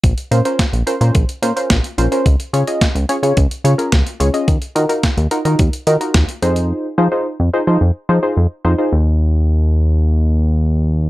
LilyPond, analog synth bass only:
\new Staff \with { instrumentName = "Analog synth bass" } { \clef bass \time 4/4 \key f \phrygian \tempo 4 = 108 bes,,16 r16 bes,16 r8 bes,,16 r16 bes,16 bes,,16 r16 bes,16 r16 bes,,16 r16 bes,,16 r16 | des,16 r16 des16 r8 des,16 r16 des16 des,16 r16 des16 r16 des,16 r16 des,16 r16 | ees,16 r16 ees16 r8 ees,16 r16 ees16 ees,16 r16 ees16 r16 ees,16 r16 f,8~ | f,16 r16 f16 r8 f,16 r16 f16 f,16 r16 f16 r16 f,16 r16 f,16 r16 |
ees,1 | }